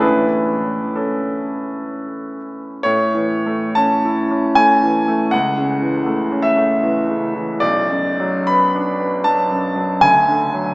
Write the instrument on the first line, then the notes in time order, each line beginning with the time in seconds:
grand piano
Already playing: A2
0.00 E3 A3 C#4 E4 B4
0.96 C#4 A4
2.83 A2 C#5
3.15 E3
3.46 A3
3.75 C#4 A5
4.05 E4
4.31 C#4
4.55 A3 G#5
4.83 E3
5.08 A3
5.31 C#2 F#5
5.58 C#3
5.82 E3
6.06 A3
6.32 C#4
6.42 E5
6.57 A3
6.83 E3
7.09 C#3
7.35 E3
7.60 B1 D5
7.90 F#2
8.20 F#3
8.47 B3 B5
8.75 D4
9.00 B3
9.24 F#3 A5
9.50 F#2
9.76 F#3
10.01 D2 G#5
10.29 D3
10.54 F#3